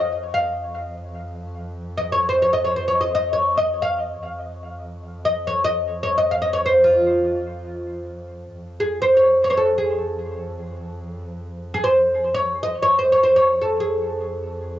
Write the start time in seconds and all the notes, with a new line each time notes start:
Already playing: F2 D#5
0.34 F5
1.97 D#5
2.12 C#5
2.29 C5
2.42 C#5
2.53 D#5
2.64 C#5
2.76 C5
2.88 C#5
3.01 D#5
3.15 D#5
3.33 C#5
3.58 D#5
3.82 F5
4.23 F2
5.25 D#5
5.47 C#5
5.64 D#5
6.03 C#5
6.18 D#5
6.31 F5
6.42 D#5
6.53 C#5
6.66 C5
6.84 F4
8.55 F2
8.80 G#4
9.02 C5
9.17 C#5
9.44 C#5
9.50 C5 C#5
9.57 A4
9.78 G#4
11.74 G#4
11.83 C5
12.34 C#5
12.63 D#5
12.83 F2 C#5
12.99 C5
13.12 C#5
13.24 C5
13.36 C#5
13.62 A4
13.80 G#4